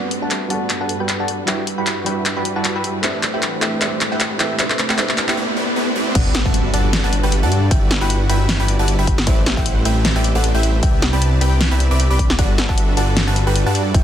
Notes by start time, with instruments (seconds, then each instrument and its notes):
Already playing: string section G2 G3 A3 F#4 B4, supersaw synth G3 D4 F#4 A4 B4, felt piano G3 B3 D4 F#4 B4, riser
0.11 closed hi-hat
0.22 supersaw synth G3 D4 F#4 A4 E5, synth pluck F#5 A5
0.31 clap, closed hi-hat
0.48 felt piano G3 B3 D4 F#4, supersaw synth G3 D4 F#4 A4 D5, synth pluck F#5 A5, closed hi-hat
0.52 felt piano B4
0.70 clap, closed hi-hat
0.80 supersaw synth G3 D4 F#4 A4 B4, synth pluck F#5 A5
0.89 closed hi-hat
1.00 supersaw synth G3 D4 F#4 A4 B4, synth pluck B4 G5
1.09 clap, closed hi-hat
1.19 supersaw synth G3 D4 F#4 A4 D5, synth pluck F#5 A5
1.28 closed hi-hat
1.45 felt piano G3 D4 E4 F#4, supersaw synth G3 E4 F#4 B4 D5, string section D4 B4, synth pluck E5 G5, clap, closed hi-hat
1.49 felt piano B4
1.67 closed hi-hat
1.78 supersaw synth G3 E4 F#4 B4 F#5, synth pluck G5 B5
1.87 clap, closed hi-hat
2.04 felt piano G3 D4 E4 F#4 B4, supersaw synth G3 E4 F#4 B4 E5, synth pluck G5 B5, closed hi-hat
2.26 clap, closed hi-hat
2.37 supersaw synth G3 E4 F#4 B4 D5, synth pluck G5 B5
2.45 closed hi-hat
2.56 supersaw synth G3 E4 F#4 B4 D5, synth pluck F#5 A5
2.65 clap, closed hi-hat
2.75 supersaw synth G3 E4 F#4 B4 E5, synth pluck G5 B5
2.84 closed hi-hat
3.02 string section A2 E3 C4, felt piano A3 C4 D4 G4, supersaw synth A3 E4 G4 B4 C5 D5, synth pluck C5 E5, clap, closed hi-hat
3.06 felt piano B4
3.23 clap, closed hi-hat
3.34 supersaw synth A3 E4 G4 B4 C5 F#5, synth pluck E5 G5
3.42 clap, closed hi-hat
3.60 felt piano A3 C4 D4 G4 B4, supersaw synth A3 E4 G4 B4 C5 E5, synth pluck E5 G5, clap, closed hi-hat
3.79 felt piano A3 C4 D4 G4 B4, supersaw synth A3 E4 G4 B4 C5 D5, synth pluck C5 E5, clap, closed hi-hat
4.01 clap, closed hi-hat
4.12 supersaw synth A3 E4 G4 B4 C5 F#5, synth pluck E5 G5
4.20 clap, closed hi-hat
4.38 felt piano A3 C4 D4 G4 B4, supersaw synth A3 E4 G4 B4 C5 E5, synth pluck E5 G5, clap, closed hi-hat
4.57 string section C3 E4, felt piano A3 C4 D4 G4, supersaw synth A3 E4 G4 B4 C5 D5, synth pluck C5 E5, clap, closed hi-hat
4.61 felt piano B4
4.70 clap
4.79 clap, closed hi-hat
4.89 supersaw synth A3 E4 G4 B4 C5 F#5, synth pluck E5 G5, clap
4.96 felt piano A3 C4 D4 G4 B4, supersaw synth A3 E4 G4 B4 C5 D5, synth pluck C5 E5, clap, closed hi-hat
5.09 clap
5.18 clap, closed hi-hat
5.28 supersaw synth A3 E4 G4 B4 C5 F#5, synth pluck E5 G5, clap
5.37 supersaw synth A3 E4 G4 B4 C5 D5
5.57 supersaw synth A3 E4 G4 B4 C5 D5
5.76 supersaw synth A3 E4 G4 B4 C5 D5
5.96 supersaw synth A3 E4 G4 B4 C5 D5
6.15 detuned saw bass G1, string section G3 D4 F#4 A4 B4, supersaw synth G3 D4 F#4 A4 B4, synth pluck D5 F#5, kick, closed hi-hat, crash, impact
6.35 snare, closed hi-hat
6.45 detuned saw bass G1, supersaw synth G3 D4 F#4 A4 E5, synth pluck F#5 A5, kick
6.54 closed hi-hat
6.74 detuned saw bass G1, supersaw synth G3 D4 F#4 A4 D5, synth pluck F#5 A5, closed hi-hat
6.93 snare, closed hi-hat
7.04 detuned saw bass G1, supersaw synth G3 D4 F#4 A4 B4, synth pluck F#5 A5
7.13 closed hi-hat
7.23 detuned saw bass G1, supersaw synth G3 D4 F#4 A4 B4, synth pluck B4 G5
7.32 closed hi-hat
7.43 detuned saw bass G2, supersaw synth G3 D4 F#4 A4 D5, synth pluck F#5 A5
7.52 closed hi-hat
7.71 detuned saw bass G1, supersaw synth G3 E4 F#4 B4 D5, string section E4, synth pluck E5 G5, kick, closed hi-hat
7.91 snare, closed hi-hat
8.01 detuned saw bass G1, supersaw synth G3 E4 F#4 B4 F#5, synth pluck G5 B5
8.10 closed hi-hat
8.29 detuned saw bass G1, supersaw synth G3 E4 F#4 B4 E5, synth pluck G5 B5, closed hi-hat
8.49 snare, closed hi-hat
8.60 detuned saw bass G1, supersaw synth G3 E4 F#4 B4 D5, synth pluck G5 B5
8.68 closed hi-hat
8.79 detuned saw bass G1, supersaw synth G3 E4 F#4 B4 D5, synth pluck F#5 A5
8.88 closed hi-hat
8.99 detuned saw bass G1, supersaw synth G3 E4 F#4 B4 E5, synth pluck G5 B5
9.07 kick, closed hi-hat
9.18 snare
9.27 detuned saw bass A1, string section A3 C4, supersaw synth A3 E4 G4 B4 C5 D5, synth pluck C5 E5, kick, closed hi-hat
9.46 snare, closed hi-hat
9.57 detuned saw bass A1, supersaw synth A3 E4 G4 B4 C5 F#5, synth pluck E5 G5, kick
9.66 closed hi-hat
9.85 detuned saw bass A1, supersaw synth A3 E4 G4 B4 C5 E5, synth pluck E5 G5, closed hi-hat
10.05 snare, closed hi-hat
10.16 detuned saw bass A1, supersaw synth A3 E4 G4 B4 C5 D5, synth pluck E5 G5
10.24 closed hi-hat
10.35 detuned saw bass A1, supersaw synth A3 E4 G4 B4 C5 D5, synth pluck A4 F#5
10.44 closed hi-hat
10.54 detuned saw bass A1, supersaw synth A3 E4 G4 B4 C5 E5, synth pluck E5 G5
10.63 closed hi-hat
10.83 detuned saw bass C2, string section C3 B3 D4 E4, supersaw synth C4 G4 D5 E5, synth pluck E5 G5, kick, closed hi-hat
11.02 snare, closed hi-hat
11.13 detuned saw bass C2, supersaw synth C4 G4 B4 D5 A5, synth pluck G5 B5
11.22 closed hi-hat
11.41 detuned saw bass C2, supersaw synth C4 G4 B4 D5 G5, synth pluck G5 B5, closed hi-hat
11.61 snare, closed hi-hat
11.71 detuned saw bass C2, supersaw synth C4 G4 B4 D5 E5, synth pluck G5 B5
11.80 closed hi-hat
11.91 detuned saw bass C2, supersaw synth C4 G4 B4 D5 E5, synth pluck B5 D6
12.00 closed hi-hat
12.10 detuned saw bass C2, supersaw synth C4 G4 B4 D5 G5, synth pluck B5 D6
12.19 kick, closed hi-hat
12.30 snare
12.39 detuned saw bass G1, supersaw synth G3 D4 F#4 A4 B4, string section F#4 A4 B4, synth pluck D5 F#5, kick, closed hi-hat
12.58 snare, closed hi-hat
12.69 detuned saw bass G1, supersaw synth G3 D4 F#4 A4 E5, synth pluck F#5 A5, kick
12.78 closed hi-hat
12.97 detuned saw bass G1, supersaw synth G3 D4 F#4 A4 D5, synth pluck F#5 A5, closed hi-hat
13.17 snare, closed hi-hat
13.27 detuned saw bass G1, supersaw synth G3 D4 F#4 A4 B4, synth pluck F#5 A5
13.36 closed hi-hat
13.47 detuned saw bass G1, supersaw synth G3 D4 F#4 A4 B4, synth pluck B4 G5
13.56 closed hi-hat
13.66 detuned saw bass G2, supersaw synth G3 D4 F#4 A4 D5, synth pluck F#5 A5
13.75 closed hi-hat
13.94 detuned saw bass G1, supersaw synth G3 E4 F#4 B4 D5, string section E4, synth pluck E5 G5, kick, closed hi-hat